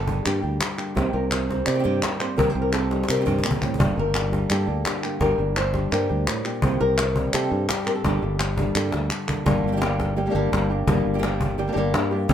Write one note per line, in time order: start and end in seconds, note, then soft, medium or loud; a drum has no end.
0.00 0.20 G1 medium
0.00 0.96 G2 medium
0.00 0.25 A4 loud
0.07 1.49 G3 soft
0.07 0.24 A#3 soft
0.07 0.25 D4 soft
0.07 0.97 D4 soft
0.07 0.24 G4 soft
0.07 cajon bass medium
0.25 0.42 G2 medium
0.25 0.42 D3 medium
0.25 0.42 G3 medium
0.25 0.43 A#3 medium
0.25 0.42 D4 medium
0.25 0.96 G4 medium
0.25 0.41 G4 medium
0.25 clap medium
0.42 0.59 D2 medium
0.42 0.59 A#3 soft
0.42 0.59 D4 soft
0.42 0.60 G4 soft
0.60 0.94 D3 medium
0.60 muted nylon-string guitar stroke medium
0.60 cajon slap medium
0.60 clap medium
0.77 0.95 A#3 soft
0.77 0.95 D4 soft
0.77 0.95 G4 soft
0.77 clap medium
0.95 1.12 C2 medium
0.95 1.13 C3 medium
0.95 2.02 C3 medium
0.95 1.13 D#3 medium
0.95 1.13 A#3 medium
0.95 1.13 C4 medium
0.95 1.12 G4 medium
0.95 cajon bass medium
0.95 cajon slap soft
1.13 1.61 C2 medium
1.13 1.31 A#3 soft
1.13 1.30 C4 soft
1.13 1.29 G4 soft
1.13 2.02 A#4 medium
1.13 cajon slap soft
1.30 1.65 A#3 soft
1.30 1.65 C4 soft
1.30 1.66 G4 soft
1.30 cajon slap medium
1.30 clap medium
1.49 2.36 C4 medium
1.49 cajon bass medium
1.49 cajon slap soft
1.66 1.83 C3 medium
1.66 2.19 D5 medium
1.66 muted nylon-string guitar stroke soft
1.66 clap medium
1.74 1.78 D#3 soft
1.74 1.78 A#3 soft
1.74 1.79 C4 soft
1.74 1.79 G4 soft
1.79 1.83 D#3 medium
1.79 1.83 A#3 soft
1.79 1.83 C4 medium
1.79 1.84 G4 medium
1.84 2.01 G2 medium
1.84 2.01 C3 medium
1.84 2.00 D#3 medium
1.84 2.01 A#3 medium
1.84 2.01 C4 medium
1.84 2.02 G4 medium
2.01 2.38 G2 medium
2.01 2.19 D#3 soft
2.01 2.19 A#3 soft
2.01 2.19 C4 soft
2.01 2.18 G4 soft
2.01 cajon slap medium
2.01 clap medium
2.19 2.37 A#3 soft
2.19 2.37 C4 soft
2.19 2.37 G4 soft
2.19 2.37 C5 medium
2.19 clap medium
2.37 2.54 C2 medium
2.37 2.54 C3 medium
2.37 3.80 C3 medium
2.37 2.55 D#3 medium
2.37 2.55 A#3 medium
2.37 2.54 C4 medium
2.37 2.54 G4 medium
2.37 2.50 A#4 loud
2.37 cajon bass medium
2.50 2.61 C5 medium
2.55 3.03 C2 medium
2.55 2.73 A#3 soft
2.55 2.72 C4 soft
2.55 2.71 G4 soft
2.55 cajon slap soft
2.62 2.73 A#4 medium
2.72 3.07 A#3 soft
2.72 3.07 C4 soft
2.72 3.07 G4 soft
2.72 3.09 A4 medium
2.72 cajon slap medium
2.72 clap medium
2.91 3.79 G3 medium
2.91 3.78 D#4 soft
2.91 cajon slap medium
3.03 cajon slap medium
3.08 3.25 C3 medium
3.08 3.80 A#4 medium
3.08 muted nylon-string guitar stroke medium
3.08 clap medium
3.15 3.20 D#3 soft
3.15 3.20 A#3 soft
3.15 3.21 C4 soft
3.15 3.21 G4 soft
3.15 cajon slap medium
3.21 3.25 D#3 medium
3.21 3.25 A#3 soft
3.21 3.25 C4 medium
3.21 3.25 G4 medium
3.25 3.42 G2 medium
3.25 3.43 C3 medium
3.25 3.42 D#3 medium
3.25 3.43 A#3 medium
3.25 3.43 C4 medium
3.25 3.43 G4 medium
3.25 cajon bass medium
3.38 cajon bass medium
3.44 3.61 A#2 medium
3.44 3.61 D#3 soft
3.44 3.61 A#3 soft
3.44 3.61 C4 soft
3.44 3.60 G4 soft
3.44 clap medium
3.51 cajon bass medium
3.61 3.79 A2 medium
3.61 3.78 A#3 soft
3.61 3.79 C4 soft
3.61 3.78 G4 soft
3.61 cajon bass medium
3.61 clap medium
3.74 cajon bass medium
3.78 3.96 G1 medium
3.78 5.18 G2 medium
3.78 3.96 D3 medium
3.78 3.96 G3 medium
3.78 4.31 G3 soft
3.78 3.96 A#3 medium
3.78 4.67 A#3 soft
3.78 3.96 D4 medium
3.78 4.14 D4 soft
3.78 3.95 G4 medium
3.78 3.99 G4 soft
3.78 cajon bass loud
3.96 4.45 G1 medium
3.96 4.13 A#3 soft
3.96 4.14 D4 soft
3.96 4.14 G4 soft
3.96 4.51 A#4 medium
3.96 cajon slap soft
4.14 4.32 D4 soft
4.14 muted nylon-string guitar stroke medium
4.14 cajon slap medium
4.14 clap medium
4.32 5.73 G3 medium
4.32 4.49 A#3 soft
4.32 5.72 D4 soft
4.32 4.49 D4 soft
4.32 4.49 G4 soft
4.32 cajon bass medium
4.32 cajon slap soft
4.49 4.66 G2 medium
4.49 4.67 D3 medium
4.49 4.67 G3 medium
4.49 4.67 A#3 medium
4.49 4.67 D4 medium
4.49 4.66 G4 medium
4.49 4.85 A4 medium
4.49 clap medium
4.67 4.83 D2 medium
4.67 6.66 A#3 soft
4.67 4.84 A#3 soft
4.67 4.84 D4 soft
4.67 4.85 G4 soft
4.84 5.18 D3 medium
4.84 5.21 G4 medium
4.84 muted nylon-string guitar stroke medium
4.84 cajon slap medium
4.84 clap medium
5.03 5.20 A#3 soft
5.03 5.20 D4 soft
5.03 5.20 G4 soft
5.03 clap medium
5.20 5.37 G1 medium
5.20 6.27 G2 medium
5.20 5.38 D3 medium
5.20 5.38 G3 medium
5.20 5.38 A#3 medium
5.20 5.38 D4 medium
5.20 5.37 G4 medium
5.20 5.57 A#4 loud
5.20 cajon bass medium
5.20 cajon slap soft
5.38 5.86 G1 medium
5.38 5.56 A#3 soft
5.38 5.56 D4 soft
5.38 5.55 G4 soft
5.38 cajon slap soft
5.56 5.91 C5 loud
5.56 muted nylon-string guitar stroke medium
5.56 cajon slap medium
5.56 clap medium
5.73 7.16 G3 medium
5.73 5.91 A#3 soft
5.73 6.63 D4 soft
5.73 5.91 D4 soft
5.73 5.91 G4 soft
5.73 cajon bass medium
5.73 cajon slap soft
5.91 6.08 G2 medium
5.91 6.09 D3 medium
5.91 6.09 G3 medium
5.91 6.09 A#3 medium
5.91 6.09 D4 medium
5.91 6.08 G4 medium
5.91 6.63 A#4 medium
5.91 clap medium
6.09 6.26 D2 medium
6.09 6.27 A#3 soft
6.09 6.27 D4 soft
6.09 6.26 G4 soft
6.27 6.45 A2 medium
6.27 muted nylon-string guitar stroke medium
6.27 cajon slap medium
6.27 clap medium
6.45 6.63 A#2 medium
6.45 6.62 A#3 soft
6.45 6.62 D4 soft
6.45 6.62 G4 soft
6.45 clap medium
6.62 6.79 C2 medium
6.62 6.80 C3 medium
6.62 7.69 C3 medium
6.62 6.80 D#3 medium
6.62 6.80 A#3 medium
6.62 6.79 C4 medium
6.62 6.79 G4 medium
6.62 cajon bass medium
6.80 7.28 C2 medium
6.80 6.97 A#3 soft
6.80 6.98 C4 soft
6.80 6.97 G4 soft
6.80 7.33 A#4 loud
6.80 cajon slap soft
6.98 muted nylon-string guitar stroke medium
6.98 cajon slap medium
6.98 clap medium
7.16 8.57 G3 medium
7.16 7.33 A#3 soft
7.16 7.33 C4 soft
7.16 7.33 G4 soft
7.16 cajon bass medium
7.33 7.50 C3 medium
7.33 7.49 C3 medium
7.33 7.50 D#3 medium
7.33 7.51 A#3 medium
7.33 7.51 C4 medium
7.33 7.50 G4 medium
7.33 7.68 A4 loud
7.33 clap medium
7.51 7.67 G2 medium
7.51 7.68 A#3 soft
7.51 7.68 C4 soft
7.51 7.68 G4 soft
7.69 8.04 G2 medium
7.69 7.86 G4 medium
7.69 muted nylon-string guitar stroke medium
7.69 cajon slap medium
7.69 clap medium
7.86 8.04 A#3 soft
7.86 8.04 C4 soft
7.86 8.03 G4 soft
7.86 7.95 A#4 loud
7.86 clap medium
7.95 8.04 A4 medium
8.04 8.20 G1 medium
8.04 10.88 G2 medium
8.04 8.21 D3 medium
8.04 8.22 G3 medium
8.04 8.22 A#3 medium
8.04 8.22 D4 medium
8.04 9.46 G4 loud
8.04 8.21 A4 medium
8.04 cajon bass loud
8.04 cajon slap soft
8.22 8.69 G1 medium
8.22 8.39 A#3 soft
8.22 8.39 D4 soft
8.22 8.57 D4 soft
8.22 8.39 A4 soft
8.40 muted nylon-string guitar stroke medium
8.40 cajon slap medium
8.40 clap medium
8.57 9.44 G3 medium
8.57 8.75 A#3 soft
8.57 8.75 D4 soft
8.57 8.74 A4 soft
8.57 cajon bass medium
8.75 8.91 G2 medium
8.75 8.92 D3 medium
8.75 8.92 G3 medium
8.75 8.93 A#3 medium
8.75 9.46 D4 soft
8.75 8.92 D4 medium
8.75 8.91 A4 medium
8.75 clap medium
8.92 9.09 D2 medium
8.92 9.10 A#3 soft
8.92 9.09 D4 soft
8.92 9.09 A4 soft
8.92 cajon slap medium
9.10 9.44 D3 medium
9.10 muted nylon-string guitar stroke soft
9.10 clap medium
9.27 9.46 A#3 soft
9.27 9.45 D4 soft
9.27 9.45 A4 soft
9.27 cajon bass medium
9.27 clap medium
9.46 9.62 G1 medium
9.46 9.81 D3 medium
9.46 9.81 G3 medium
9.46 9.81 A#3 medium
9.46 9.81 D4 medium
9.46 9.80 G4 medium
9.46 muted nylon-string guitar stroke medium
9.46 cajon bass loud
9.64 10.27 G1 medium
9.64 9.71 G3 soft
9.68 9.75 G3 soft
9.68 9.71 A#3 soft
9.68 9.72 D4 soft
9.68 9.72 G4 soft
9.72 9.76 A#3 soft
9.72 9.76 D4 medium
9.72 9.77 G4 medium
9.76 9.80 G3 medium
9.76 9.80 A#3 medium
9.76 9.81 D4 medium
9.76 9.81 G4 medium
9.81 10.15 D3 medium
9.81 10.15 G3 medium
9.81 10.16 A#3 medium
9.81 10.16 A#3 soft
9.81 10.16 D4 medium
9.81 10.17 D4 soft
9.81 10.16 G4 medium
9.81 10.17 G4 medium
9.81 cajon slap medium
10.00 cajon bass medium
10.00 cajon slap soft
10.16 10.34 D3 medium
10.16 10.34 G3 medium
10.16 10.34 A#3 medium
10.16 10.34 D4 medium
10.16 10.34 G4 medium
10.16 muted nylon-string guitar stroke medium
10.16 cajon slap soft
10.26 10.29 G3 soft
10.26 10.30 A#3 soft
10.26 10.30 D4 medium
10.26 10.30 G4 medium
10.30 10.34 G3 medium
10.30 10.34 A#3 medium
10.30 10.34 D4 medium
10.30 10.35 G4 medium
10.35 10.50 G1 medium
10.35 10.52 D3 medium
10.35 10.50 G3 medium
10.35 10.51 A#3 medium
10.35 10.52 A#3 soft
10.35 10.52 D4 soft
10.35 10.51 D4 medium
10.35 10.52 G4 soft
10.35 10.52 G4 medium
10.52 10.84 G1 medium
10.52 10.69 G3 medium
10.52 10.69 A#3 medium
10.52 10.70 D4 medium
10.52 10.68 G4 medium
10.52 muted nylon-string guitar stroke medium
10.52 cajon bass medium
10.52 cajon slap medium
10.70 10.88 A#3 soft
10.70 10.87 D4 medium
10.70 10.88 D4 soft
10.70 10.87 G4 medium
10.70 10.87 G4 soft
10.87 11.03 G1 medium
10.87 11.23 D3 medium
10.87 11.23 G3 medium
10.87 11.23 A#3 medium
10.87 11.23 D4 medium
10.87 11.23 G4 medium
10.87 muted nylon-string guitar stroke medium
10.87 cajon bass loud
11.05 11.69 G1 medium
11.05 cajon slap soft
11.14 11.17 G3 soft
11.14 11.18 A#3 soft
11.14 11.18 D4 soft
11.14 11.18 G4 soft
11.18 11.22 G3 soft
11.18 11.23 A#3 medium
11.18 11.23 D4 medium
11.18 11.23 G4 medium
11.23 11.57 D3 medium
11.23 11.57 G3 medium
11.23 11.57 A#3 medium
11.23 11.58 A#3 soft
11.23 11.58 D4 medium
11.23 11.58 G4 medium
11.23 cajon slap medium
11.41 cajon bass medium
11.58 11.75 D3 medium
11.58 11.76 G3 medium
11.58 11.76 A#3 medium
11.58 11.75 D4 medium
11.58 11.74 G4 medium
11.58 muted nylon-string guitar stroke medium
11.58 cajon slap soft
11.68 11.71 G3 medium
11.68 11.71 A#3 medium
11.68 11.72 D4 medium
11.68 11.73 G4 medium
11.72 11.92 G1 medium
11.72 11.76 G3 medium
11.72 11.76 A#3 medium
11.72 11.77 D4 medium
11.72 11.93 D4 soft
11.72 11.77 G4 medium
11.72 11.93 G4 soft
11.77 11.94 D3 medium
11.77 11.94 G3 medium
11.77 11.93 A#3 soft
11.77 11.94 A#3 loud
11.77 11.94 D4 medium
11.77 11.94 G4 medium
11.94 12.26 G2 medium
11.94 12.12 G3 medium
11.94 12.12 A#3 medium
11.94 12.12 D4 medium
11.94 12.11 G4 medium
11.94 muted nylon-string guitar stroke soft
11.94 cajon slap loud
12.11 12.28 A#3 soft
12.11 12.29 A#3 soft
12.11 12.29 D4 soft
12.11 12.30 D4 soft
12.11 12.29 G4 soft
12.11 12.29 G4 medium
12.28 12.34 C2 medium
12.28 12.34 C3 medium
12.28 12.34 D#3 medium
12.28 12.34 G3 medium
12.28 12.34 A#3 medium
12.28 12.34 C4 medium
12.28 12.34 D#4 medium
12.28 12.34 G4 medium
12.28 cajon bass loud